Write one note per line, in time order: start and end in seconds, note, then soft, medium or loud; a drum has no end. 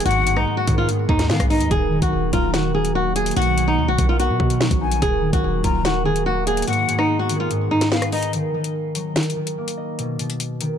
0.00 0.11 D#3 medium
0.00 8.29 D#3 medium
0.00 2.85 A#3 medium
0.00 0.89 D#4 medium
0.00 1.63 D#5 medium
0.00 closed hi-hat medium
0.05 0.38 G#1 loud
0.05 0.24 G#2 loud
0.05 1.69 G#3 medium
0.05 1.69 B3 medium
0.05 0.35 F#4 medium
0.05 1.69 G#4 medium
0.05 0.44 F#5 loud
0.05 closed hi-hat medium
0.11 closed hi-hat soft
0.26 0.87 G#2 medium
0.26 closed hi-hat medium
0.36 0.46 B1 medium
0.36 0.55 D#4 medium
0.36 cross-stick medium
0.57 0.76 F#4 medium
0.67 0.87 G#2 loud
0.67 1.70 D#3 medium
0.67 kick medium
0.67 closed hi-hat medium
0.78 0.87 F4 medium
0.88 1.08 G#2 medium
0.88 closed hi-hat medium
1.09 1.31 D#2 loud
1.09 1.76 G#2 medium
1.09 1.28 D#4 medium
1.09 kick medium
1.19 snare medium
1.19 closed hi-hat medium
1.29 1.39 D#3 loud
1.29 1.76 G#3 medium
1.29 1.48 B3 medium
1.29 1.49 F5 loud
1.29 snare loud
1.40 1.62 B1 loud
1.40 kick loud
1.40 cross-stick medium
1.40 closed hi-hat medium
1.50 1.69 D#4 medium
1.50 4.21 D#4 medium
1.50 1.70 D#5 medium
1.50 open hi-hat medium
1.60 1.70 D#2 loud
1.60 closed hi-hat medium
1.71 2.01 D#1 loud
1.71 1.91 D#3 loud
1.71 4.99 F#3 medium
1.71 3.35 A#3 medium
1.71 4.99 F#4 medium
1.71 2.00 G#4 loud
1.71 kick loud
1.71 closed hi-hat medium
1.92 2.53 D#3 medium
2.02 2.12 A#1 loud
2.02 2.31 F#4 medium
2.02 kick loud
2.02 closed hi-hat medium
2.12 2.32 D#1 loud
2.33 3.33 D#1 loud
2.33 2.59 F#3 medium
2.33 2.52 F4 medium
2.33 2.53 A#5 medium
2.33 kick medium
2.33 closed hi-hat medium
2.54 2.73 D#3 medium
2.54 2.72 F#4 medium
2.54 snare loud
2.54 closed hi-hat medium
2.74 3.42 D#3 medium
2.74 2.93 G#4 medium
2.85 closed hi-hat medium
2.95 3.42 A#3 medium
2.95 3.14 F#4 medium
3.15 3.34 G#4 medium
3.15 4.94 D#5 medium
3.15 closed hi-hat medium
3.26 closed hi-hat medium
3.31 closed hi-hat medium
3.36 3.79 B1 loud
3.36 3.56 B2 medium
3.36 5.00 B3 medium
3.36 3.66 F#4 loud
3.36 3.75 F#5 loud
3.36 closed hi-hat medium
3.42 closed hi-hat soft
3.58 4.04 B2 medium
3.58 closed hi-hat medium
3.68 3.86 D#4 medium
3.78 3.90 D#2 loud
3.88 3.98 B1 loud
3.88 4.07 F#4 medium
3.98 4.31 B1 loud
3.98 5.01 D#3 medium
3.98 kick medium
3.98 closed hi-hat medium
4.09 4.18 F4 medium
4.19 6.32 B3 medium
4.19 4.98 F#4 medium
4.19 closed hi-hat medium
4.30 4.39 B2 loud
4.40 4.70 B2 loud
4.40 kick medium
4.50 closed hi-hat medium
4.60 5.07 F#3 medium
4.60 snare loud
4.71 5.01 A#1 loud
4.71 kick loud
4.71 closed hi-hat medium
4.81 7.51 D#4 medium
4.81 5.01 G#5 medium
4.92 closed hi-hat medium
5.02 5.32 D#1 loud
5.02 5.22 D#3 medium
5.02 6.66 F#3 medium
5.02 6.66 A#3 medium
5.02 6.66 F#4 medium
5.02 5.31 G#4 loud
5.02 kick loud
5.02 closed hi-hat medium
5.23 5.84 D#3 medium
5.33 5.43 A#1 loud
5.33 5.62 F#4 medium
5.33 kick loud
5.33 closed hi-hat medium
5.43 5.63 D#1 loud
5.64 6.64 D#1 loud
5.64 5.90 F#3 medium
5.64 5.83 F4 medium
5.64 5.84 A#5 medium
5.64 kick medium
5.64 closed hi-hat medium
5.85 6.04 D#3 medium
5.85 6.04 F#4 medium
5.85 snare loud
5.85 closed hi-hat medium
6.05 6.73 D#3 medium
6.05 6.24 G#4 medium
6.16 closed hi-hat medium
6.26 9.47 A#3 medium
6.26 6.45 F#4 medium
6.46 6.65 G#4 medium
6.46 8.25 D#5 medium
6.46 closed hi-hat medium
6.57 closed hi-hat medium
6.62 closed hi-hat medium
6.67 6.87 G#2 loud
6.67 8.31 G#3 medium
6.67 8.31 B3 medium
6.67 6.97 F#4 medium
6.67 8.31 G#4 medium
6.67 7.06 F#5 loud
6.67 closed hi-hat medium
6.73 closed hi-hat soft
6.88 7.49 G#2 medium
6.88 closed hi-hat medium
6.98 7.17 D#4 medium
6.98 cross-stick medium
7.19 7.38 F#4 medium
7.29 8.33 D#3 medium
7.29 closed hi-hat medium
7.40 7.49 F4 medium
7.50 7.70 G#2 medium
7.50 closed hi-hat medium
7.71 8.38 G#2 medium
7.71 7.90 D#4 medium
7.81 snare medium
7.81 closed hi-hat medium
7.91 8.38 G#3 medium
7.91 8.10 B3 medium
7.91 8.11 F5 medium
7.91 snare loud
8.02 cross-stick loud
8.02 closed hi-hat medium
8.12 8.31 D#4 medium
8.12 10.78 D#4 medium
8.12 8.32 D#5 medium
8.12 open hi-hat medium
8.23 closed hi-hat medium
8.33 8.53 D#3 loud
8.33 closed hi-hat medium
8.54 9.15 D#3 medium
8.64 closed hi-hat medium
8.95 9.21 F#3 medium
8.95 closed hi-hat medium
9.16 9.35 D#3 medium
9.16 snare loud
9.16 closed hi-hat soft
9.23 closed hi-hat medium
9.30 closed hi-hat medium
9.36 10.04 D#3 medium
9.47 closed hi-hat medium
9.58 10.05 A#3 medium
9.68 closed hi-hat medium
9.78 10.78 D#5 medium
9.99 10.19 B2 medium
9.99 closed hi-hat medium
10.19 10.66 B2 medium
10.19 closed hi-hat medium
10.30 closed hi-hat medium
10.40 closed hi-hat medium
10.61 10.78 D#3 medium
10.61 closed hi-hat medium